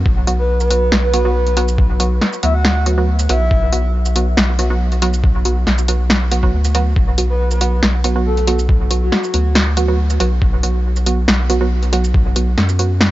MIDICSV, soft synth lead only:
0, 0, Header, 1, 2, 480
1, 0, Start_track
1, 0, Key_signature, 2, "minor"
1, 0, Tempo, 431655
1, 63, Time_signature, 4, 2, 24, 8
1, 14578, End_track
2, 0, Start_track
2, 0, Title_t, "Soft synth lead"
2, 0, Program_c, 0, 80
2, 430, Note_on_c, 0, 71, 93
2, 645, Note_off_c, 0, 71, 0
2, 670, Note_on_c, 0, 71, 94
2, 1024, Note_off_c, 0, 71, 0
2, 1150, Note_on_c, 0, 71, 94
2, 1820, Note_off_c, 0, 71, 0
2, 2702, Note_on_c, 0, 76, 94
2, 2804, Note_off_c, 0, 76, 0
2, 2828, Note_on_c, 0, 78, 97
2, 3183, Note_off_c, 0, 78, 0
2, 3661, Note_on_c, 0, 76, 98
2, 4337, Note_off_c, 0, 76, 0
2, 8110, Note_on_c, 0, 71, 98
2, 8325, Note_off_c, 0, 71, 0
2, 8350, Note_on_c, 0, 71, 97
2, 8704, Note_off_c, 0, 71, 0
2, 9184, Note_on_c, 0, 69, 96
2, 9550, Note_off_c, 0, 69, 0
2, 10031, Note_on_c, 0, 66, 102
2, 10700, Note_off_c, 0, 66, 0
2, 14578, End_track
0, 0, End_of_file